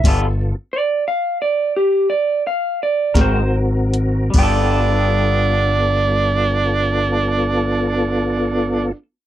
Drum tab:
CC |x-----------|x-----------|
HH |x--------x-x|------------|
SD |---------o--|------------|
BD |o--------o--|o-----------|